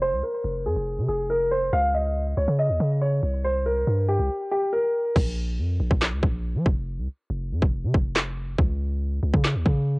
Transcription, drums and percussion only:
5.16 kick loud
5.16 crash loud
5.91 kick medium
6.02 snare loud
6.02 clap medium
6.23 kick loud
6.66 kick loud
7.62 kick loud
7.94 kick loud
8.16 snare loud
8.16 clap medium
8.59 kick loud
9.34 kick loud
9.44 snare loud
9.44 clap medium
9.66 kick loud

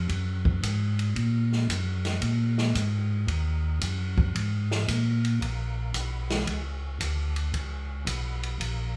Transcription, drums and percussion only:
0.09 kick soft
0.09 ride medium
0.45 kick medium
0.63 kick soft
0.63 hi-hat pedal medium
0.63 ride medium
0.99 ride medium
1.16 kick soft
1.16 ride medium
1.53 snare soft
1.69 kick soft
1.69 hi-hat pedal medium
1.69 ride medium
2.05 snare soft
2.05 ride soft
2.22 kick soft
2.22 ride medium
2.58 snare soft
2.75 kick soft
2.75 hi-hat pedal medium
2.75 ride medium
3.28 kick soft
3.28 ride medium
3.81 kick soft
3.81 hi-hat pedal medium
3.81 ride medium
4.18 kick medium
4.35 kick soft
4.35 ride medium
4.71 snare medium
4.88 kick soft
4.88 hi-hat pedal medium
4.88 ride medium
5.25 ride soft
5.41 kick soft
5.41 ride medium
5.94 kick soft
5.94 hi-hat pedal medium
5.94 ride medium
6.30 snare medium
6.30 ride soft
6.47 kick soft
6.47 ride medium
7.00 kick soft
7.00 hi-hat pedal medium
7.00 ride medium
7.36 ride soft
7.54 kick soft
7.54 ride medium
8.07 kick soft
8.07 hi-hat pedal medium
8.07 ride medium
8.43 ride medium
8.60 kick soft
8.60 ride medium

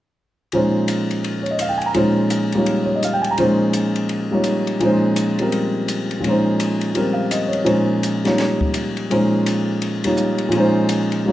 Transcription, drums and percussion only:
0.52 ride soft
0.88 hi-hat pedal soft
0.88 ride medium
1.11 ride soft
1.24 ride soft
1.46 ride soft
1.59 hi-hat pedal soft
1.59 ride medium
1.81 ride soft
1.94 ride soft
2.30 hi-hat pedal medium
2.30 ride medium
2.52 ride soft
2.66 ride soft
3.03 hi-hat pedal soft
3.03 ride soft
3.24 ride soft
3.38 ride soft
3.73 hi-hat pedal medium
3.73 ride soft
3.96 ride soft
4.09 ride soft
4.44 hi-hat pedal medium
4.44 ride medium
4.67 ride soft
4.80 ride soft
5.16 hi-hat pedal soft
5.16 ride medium
5.39 ride soft
5.52 ride soft
5.88 hi-hat pedal soft
5.88 ride medium
6.11 ride soft
6.24 ride soft
6.60 hi-hat pedal medium
6.60 ride medium
6.81 ride soft
6.95 ride soft
7.31 hi-hat pedal medium
7.31 ride medium
7.53 ride soft
7.66 ride soft
8.03 hi-hat pedal medium
8.03 ride medium
8.25 snare soft
8.25 ride soft
8.38 snare soft
8.38 ride soft
8.61 kick soft
8.74 hi-hat pedal soft
8.74 ride medium
8.97 ride soft
9.11 ride soft
9.46 hi-hat pedal soft
9.46 ride medium
9.82 ride soft
10.04 ride medium
10.17 hi-hat pedal soft
10.38 ride soft
10.52 ride medium
10.89 hi-hat pedal medium
10.89 ride medium
11.12 ride soft

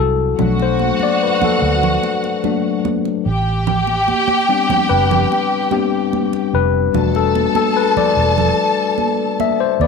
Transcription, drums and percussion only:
0.39 muted conga soft
0.39 low conga medium
0.59 muted conga soft
0.79 high conga medium
1.00 high conga medium
1.42 muted conga soft
1.42 high conga medium
1.42 low conga medium
1.83 low conga medium
2.03 muted conga soft
2.24 muted conga soft
2.44 high conga medium
2.85 muted conga soft
2.85 high conga medium
3.05 muted conga soft
3.67 muted conga soft
3.67 low conga medium
3.87 muted conga soft
4.08 high conga medium
4.28 high conga medium
4.70 muted conga soft
4.70 high conga medium
4.70 low conga medium
5.11 low conga medium
5.32 muted conga soft
5.71 high conga medium
6.13 muted conga soft
6.13 high conga medium
6.33 muted conga soft
6.94 muted conga soft
6.94 low conga medium
7.15 muted conga soft
7.35 high conga medium
7.55 high conga medium
7.97 muted conga soft
7.97 high conga medium
7.97 low conga medium
8.38 low conga medium
8.98 high conga medium
9.40 muted conga soft
9.40 high conga medium
9.81 high conga soft

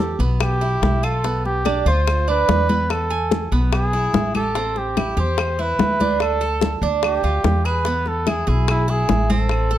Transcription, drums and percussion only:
0.20 high bongo soft
0.20 high conga soft
0.41 high bongo medium
0.41 high conga soft
0.41 claves medium
0.62 high bongo soft
0.62 high conga soft
0.83 high bongo medium
0.83 low bongo medium
0.83 high conga medium
1.04 claves medium
1.24 high bongo medium
1.24 high conga soft
1.45 high bongo soft
1.45 high conga soft
1.66 high bongo medium
1.66 high conga medium
1.66 claves medium
1.87 high bongo soft
2.07 high bongo medium
2.07 high conga soft
2.07 claves medium
2.29 high conga soft
2.49 high bongo medium
2.49 low bongo medium
2.49 high conga medium
2.69 high bongo soft
2.69 high conga medium
2.90 high bongo medium
2.90 high conga soft
2.90 claves medium
3.11 high bongo soft
3.11 high conga soft
3.31 high bongo medium
3.31 high conga medium
3.52 high bongo soft
3.52 high conga soft
3.73 high bongo medium
3.73 high conga soft
3.73 claves medium
3.93 high bongo soft
3.93 high conga soft
4.14 high bongo medium
4.14 low bongo medium
4.14 high conga medium
4.35 high conga medium
4.35 claves medium
4.55 high bongo medium
4.55 high conga soft
4.76 high bongo soft
4.76 high conga soft
4.97 high bongo medium
4.97 high conga medium
4.97 claves medium
5.18 high bongo soft
5.38 high bongo medium
5.38 high conga soft
5.38 claves medium
5.59 high conga soft
5.79 high bongo medium
5.79 low bongo medium
5.79 high conga medium
6.00 high bongo soft
6.00 high conga medium
6.20 high bongo medium
6.20 high conga soft
6.20 claves medium
6.41 high bongo soft
6.41 high conga soft
6.61 high bongo soft
6.61 high conga medium
6.82 high bongo soft
6.82 high conga soft
7.03 high bongo medium
7.03 high conga soft
7.03 claves medium
7.23 high bongo soft
7.23 high conga soft
7.44 high bongo medium
7.44 low bongo medium
7.44 high conga medium
7.66 claves medium
7.85 high bongo medium
7.85 high conga soft
8.06 high bongo soft
8.06 high conga soft
8.27 high bongo soft
8.27 high conga medium
8.27 claves medium
8.48 high bongo soft
8.68 high bongo medium
8.68 high conga soft
8.68 claves medium
8.89 high conga soft
9.09 high bongo medium
9.09 low bongo medium
9.09 high conga medium
9.30 high bongo soft
9.30 high conga medium
9.49 high bongo medium
9.49 high conga soft
9.49 claves medium
9.71 high bongo soft
9.71 high conga soft

